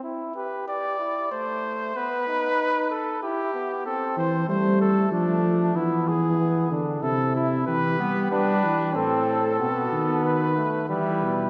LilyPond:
<<
  \new Staff \with { instrumentName = "Trumpet" } { \time 3/4 \key a \minor \tempo 4 = 94 r8 b'8 d''4 c''4 | b'4. a'8 g'4 | a'8 c''8 c''8 a'8 d'4 | e'8 gis'4 r8 a'8 e'8 |
b'4 b'4 a'4~ | a'4 b'4 b'4 | }
  \new Staff \with { instrumentName = "Trumpet" } { \time 3/4 \key a \minor e'8 g'8 g'8 e'8 a4 | b8 dis'4 r8 e'8 b8 | c'4 a4 a4 | b4 b8 d'8 e'4 |
g'2 a'4 | fis'4. r8 e'4 | }
  \new Staff \with { instrumentName = "Trombone" } { \time 3/4 \key a \minor r2. | r2. | r2. | r2. |
r8 b8 d'4 c'4 | b4. a8 g4 | }
  \new Staff \with { instrumentName = "Tuba" } { \clef bass \time 3/4 \key a \minor r2. | r2. | r8 e8 g4 f4 | e4. d8 c4 |
e8 g8 g8 e8 a,4 | b,8 dis4 r8 e8 b,8 | }
>>